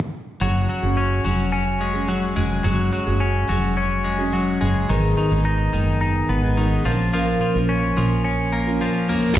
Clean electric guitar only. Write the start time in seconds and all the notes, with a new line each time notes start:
0.41 F#3
0.69 F#3
0.97 C#4
1.25 F#3
1.52 C#4
1.81 G#3
2.08 F#3
2.36 G#3
2.64 F#3
2.93 F#3
3.20 C#4
3.49 F#3
3.77 C#4
4.04 G#3
4.33 F#3
4.61 G#3
4.89 D#3
5.17 D#3
5.45 D#4
5.73 D#3
6.01 D#4
6.29 B3
6.57 D#3
6.85 F3
7.13 F3
7.41 F3
7.69 C#4
7.97 F3
8.24 C#4
8.53 A#3
8.81 F3
9.09 A#3